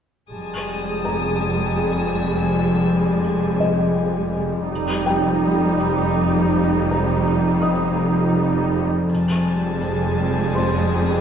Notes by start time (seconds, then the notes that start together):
0.31 F1 F2 G3 G#3 G#5 A5 D#6
1.05 A#5
2.22 E6
3.60 D#5
4.69 F1 F2 G3 D#4
5.06 G5
6.91 A#5
7.62 D#5 D#6
9.09 F1 F2 G3 G#3 G#5 A5
10.55 C5 C6 D#6